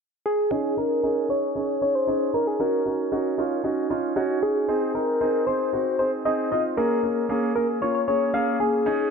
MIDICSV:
0, 0, Header, 1, 3, 480
1, 0, Start_track
1, 0, Key_signature, -5, "major"
1, 0, Tempo, 521739
1, 472, Time_signature, 4, 2, 24, 8
1, 8376, End_track
2, 0, Start_track
2, 0, Title_t, "Soft synth lead"
2, 0, Program_c, 0, 80
2, 236, Note_on_c, 0, 68, 92
2, 716, Note_on_c, 0, 70, 96
2, 729, Note_off_c, 0, 68, 0
2, 1195, Note_on_c, 0, 73, 110
2, 1209, Note_off_c, 0, 70, 0
2, 1670, Note_off_c, 0, 73, 0
2, 1676, Note_on_c, 0, 73, 98
2, 1796, Note_on_c, 0, 72, 103
2, 1810, Note_off_c, 0, 73, 0
2, 2154, Note_on_c, 0, 70, 89
2, 2168, Note_off_c, 0, 72, 0
2, 2275, Note_on_c, 0, 68, 82
2, 2289, Note_off_c, 0, 70, 0
2, 2396, Note_on_c, 0, 70, 91
2, 2410, Note_off_c, 0, 68, 0
2, 3354, Note_off_c, 0, 70, 0
2, 4073, Note_on_c, 0, 68, 87
2, 4553, Note_on_c, 0, 70, 96
2, 4566, Note_off_c, 0, 68, 0
2, 5031, Note_on_c, 0, 72, 98
2, 5045, Note_off_c, 0, 70, 0
2, 5505, Note_off_c, 0, 72, 0
2, 5510, Note_on_c, 0, 72, 90
2, 5619, Note_off_c, 0, 72, 0
2, 5753, Note_on_c, 0, 75, 94
2, 5976, Note_off_c, 0, 75, 0
2, 5995, Note_on_c, 0, 75, 94
2, 6103, Note_off_c, 0, 75, 0
2, 6231, Note_on_c, 0, 70, 99
2, 6915, Note_off_c, 0, 70, 0
2, 6950, Note_on_c, 0, 70, 88
2, 7059, Note_off_c, 0, 70, 0
2, 7193, Note_on_c, 0, 73, 98
2, 7304, Note_off_c, 0, 73, 0
2, 7311, Note_on_c, 0, 73, 94
2, 7365, Note_off_c, 0, 73, 0
2, 7433, Note_on_c, 0, 73, 98
2, 7672, Note_on_c, 0, 77, 102
2, 7686, Note_off_c, 0, 73, 0
2, 7907, Note_off_c, 0, 77, 0
2, 7913, Note_on_c, 0, 68, 98
2, 8376, Note_off_c, 0, 68, 0
2, 8376, End_track
3, 0, Start_track
3, 0, Title_t, "Grand piano"
3, 0, Program_c, 1, 0
3, 468, Note_on_c, 1, 61, 107
3, 470, Note_on_c, 1, 63, 95
3, 473, Note_on_c, 1, 68, 120
3, 667, Note_off_c, 1, 61, 0
3, 668, Note_off_c, 1, 63, 0
3, 670, Note_off_c, 1, 68, 0
3, 710, Note_on_c, 1, 61, 69
3, 711, Note_on_c, 1, 63, 64
3, 714, Note_on_c, 1, 68, 75
3, 908, Note_off_c, 1, 61, 0
3, 909, Note_off_c, 1, 63, 0
3, 910, Note_off_c, 1, 68, 0
3, 949, Note_on_c, 1, 61, 89
3, 951, Note_on_c, 1, 63, 82
3, 953, Note_on_c, 1, 68, 102
3, 1148, Note_off_c, 1, 61, 0
3, 1149, Note_off_c, 1, 63, 0
3, 1150, Note_off_c, 1, 68, 0
3, 1188, Note_on_c, 1, 61, 70
3, 1191, Note_on_c, 1, 63, 65
3, 1194, Note_on_c, 1, 68, 73
3, 1387, Note_off_c, 1, 61, 0
3, 1389, Note_off_c, 1, 63, 0
3, 1390, Note_off_c, 1, 68, 0
3, 1429, Note_on_c, 1, 61, 71
3, 1431, Note_on_c, 1, 63, 63
3, 1434, Note_on_c, 1, 68, 77
3, 1628, Note_off_c, 1, 61, 0
3, 1629, Note_off_c, 1, 63, 0
3, 1630, Note_off_c, 1, 68, 0
3, 1669, Note_on_c, 1, 61, 69
3, 1671, Note_on_c, 1, 63, 60
3, 1673, Note_on_c, 1, 68, 73
3, 1868, Note_off_c, 1, 61, 0
3, 1869, Note_off_c, 1, 63, 0
3, 1870, Note_off_c, 1, 68, 0
3, 1907, Note_on_c, 1, 61, 88
3, 1910, Note_on_c, 1, 63, 77
3, 1913, Note_on_c, 1, 68, 96
3, 2107, Note_off_c, 1, 61, 0
3, 2108, Note_off_c, 1, 63, 0
3, 2110, Note_off_c, 1, 68, 0
3, 2149, Note_on_c, 1, 61, 69
3, 2151, Note_on_c, 1, 63, 62
3, 2153, Note_on_c, 1, 70, 75
3, 2348, Note_off_c, 1, 61, 0
3, 2349, Note_off_c, 1, 63, 0
3, 2350, Note_off_c, 1, 70, 0
3, 2388, Note_on_c, 1, 61, 92
3, 2391, Note_on_c, 1, 63, 84
3, 2393, Note_on_c, 1, 66, 97
3, 2587, Note_off_c, 1, 61, 0
3, 2589, Note_off_c, 1, 63, 0
3, 2590, Note_off_c, 1, 66, 0
3, 2628, Note_on_c, 1, 61, 70
3, 2630, Note_on_c, 1, 63, 65
3, 2632, Note_on_c, 1, 66, 76
3, 2827, Note_off_c, 1, 61, 0
3, 2828, Note_off_c, 1, 63, 0
3, 2829, Note_off_c, 1, 66, 0
3, 2868, Note_on_c, 1, 61, 89
3, 2870, Note_on_c, 1, 63, 80
3, 2873, Note_on_c, 1, 66, 99
3, 3067, Note_off_c, 1, 61, 0
3, 3068, Note_off_c, 1, 63, 0
3, 3070, Note_off_c, 1, 66, 0
3, 3109, Note_on_c, 1, 61, 81
3, 3112, Note_on_c, 1, 63, 73
3, 3114, Note_on_c, 1, 65, 93
3, 3308, Note_off_c, 1, 61, 0
3, 3309, Note_off_c, 1, 63, 0
3, 3310, Note_off_c, 1, 65, 0
3, 3348, Note_on_c, 1, 61, 84
3, 3350, Note_on_c, 1, 63, 76
3, 3353, Note_on_c, 1, 66, 89
3, 3547, Note_off_c, 1, 61, 0
3, 3548, Note_off_c, 1, 63, 0
3, 3550, Note_off_c, 1, 66, 0
3, 3587, Note_on_c, 1, 61, 81
3, 3590, Note_on_c, 1, 63, 78
3, 3591, Note_on_c, 1, 65, 89
3, 3787, Note_off_c, 1, 61, 0
3, 3788, Note_off_c, 1, 63, 0
3, 3789, Note_off_c, 1, 65, 0
3, 3827, Note_on_c, 1, 61, 102
3, 3829, Note_on_c, 1, 63, 91
3, 3832, Note_on_c, 1, 66, 121
3, 4027, Note_off_c, 1, 61, 0
3, 4028, Note_off_c, 1, 63, 0
3, 4029, Note_off_c, 1, 66, 0
3, 4068, Note_on_c, 1, 61, 68
3, 4267, Note_off_c, 1, 61, 0
3, 4308, Note_on_c, 1, 60, 92
3, 4311, Note_on_c, 1, 63, 84
3, 4313, Note_on_c, 1, 68, 99
3, 4507, Note_off_c, 1, 60, 0
3, 4509, Note_off_c, 1, 63, 0
3, 4510, Note_off_c, 1, 68, 0
3, 4551, Note_on_c, 1, 60, 71
3, 4552, Note_on_c, 1, 63, 67
3, 4555, Note_on_c, 1, 68, 76
3, 4749, Note_off_c, 1, 60, 0
3, 4749, Note_off_c, 1, 63, 0
3, 4751, Note_off_c, 1, 68, 0
3, 4790, Note_on_c, 1, 60, 91
3, 4792, Note_on_c, 1, 63, 85
3, 4794, Note_on_c, 1, 68, 99
3, 4988, Note_off_c, 1, 60, 0
3, 4989, Note_off_c, 1, 63, 0
3, 4990, Note_off_c, 1, 68, 0
3, 5030, Note_on_c, 1, 60, 73
3, 5032, Note_on_c, 1, 63, 65
3, 5035, Note_on_c, 1, 68, 81
3, 5228, Note_off_c, 1, 60, 0
3, 5229, Note_off_c, 1, 63, 0
3, 5231, Note_off_c, 1, 68, 0
3, 5270, Note_on_c, 1, 60, 70
3, 5272, Note_on_c, 1, 63, 66
3, 5274, Note_on_c, 1, 66, 78
3, 5468, Note_off_c, 1, 60, 0
3, 5469, Note_off_c, 1, 63, 0
3, 5470, Note_off_c, 1, 66, 0
3, 5510, Note_on_c, 1, 60, 70
3, 5512, Note_on_c, 1, 63, 64
3, 5514, Note_on_c, 1, 68, 75
3, 5708, Note_off_c, 1, 60, 0
3, 5709, Note_off_c, 1, 63, 0
3, 5710, Note_off_c, 1, 68, 0
3, 5752, Note_on_c, 1, 60, 86
3, 5754, Note_on_c, 1, 63, 77
3, 5756, Note_on_c, 1, 68, 98
3, 5949, Note_off_c, 1, 60, 0
3, 5950, Note_off_c, 1, 63, 0
3, 5951, Note_off_c, 1, 68, 0
3, 5992, Note_on_c, 1, 60, 69
3, 5995, Note_on_c, 1, 63, 65
3, 5997, Note_on_c, 1, 65, 78
3, 6189, Note_off_c, 1, 60, 0
3, 6191, Note_off_c, 1, 63, 0
3, 6192, Note_off_c, 1, 65, 0
3, 6230, Note_on_c, 1, 58, 90
3, 6233, Note_on_c, 1, 61, 80
3, 6234, Note_on_c, 1, 68, 101
3, 6428, Note_off_c, 1, 58, 0
3, 6430, Note_off_c, 1, 61, 0
3, 6430, Note_off_c, 1, 68, 0
3, 6470, Note_on_c, 1, 58, 71
3, 6472, Note_on_c, 1, 61, 64
3, 6668, Note_off_c, 1, 58, 0
3, 6669, Note_off_c, 1, 61, 0
3, 6708, Note_on_c, 1, 58, 91
3, 6711, Note_on_c, 1, 61, 81
3, 6713, Note_on_c, 1, 68, 98
3, 6907, Note_off_c, 1, 58, 0
3, 6909, Note_off_c, 1, 61, 0
3, 6910, Note_off_c, 1, 68, 0
3, 6955, Note_on_c, 1, 68, 75
3, 7151, Note_off_c, 1, 68, 0
3, 7189, Note_on_c, 1, 58, 68
3, 7192, Note_on_c, 1, 61, 63
3, 7193, Note_on_c, 1, 65, 76
3, 7388, Note_off_c, 1, 58, 0
3, 7389, Note_off_c, 1, 61, 0
3, 7390, Note_off_c, 1, 65, 0
3, 7431, Note_on_c, 1, 58, 71
3, 7432, Note_on_c, 1, 61, 63
3, 7434, Note_on_c, 1, 68, 76
3, 7629, Note_off_c, 1, 58, 0
3, 7629, Note_off_c, 1, 61, 0
3, 7630, Note_off_c, 1, 68, 0
3, 7668, Note_on_c, 1, 58, 83
3, 7670, Note_on_c, 1, 61, 80
3, 7673, Note_on_c, 1, 68, 94
3, 7867, Note_off_c, 1, 58, 0
3, 7868, Note_off_c, 1, 61, 0
3, 7870, Note_off_c, 1, 68, 0
3, 7911, Note_on_c, 1, 58, 69
3, 7914, Note_on_c, 1, 61, 61
3, 7915, Note_on_c, 1, 68, 73
3, 8109, Note_off_c, 1, 58, 0
3, 8110, Note_off_c, 1, 61, 0
3, 8111, Note_off_c, 1, 68, 0
3, 8151, Note_on_c, 1, 61, 92
3, 8154, Note_on_c, 1, 63, 83
3, 8156, Note_on_c, 1, 68, 101
3, 8349, Note_off_c, 1, 61, 0
3, 8350, Note_off_c, 1, 63, 0
3, 8351, Note_off_c, 1, 68, 0
3, 8376, End_track
0, 0, End_of_file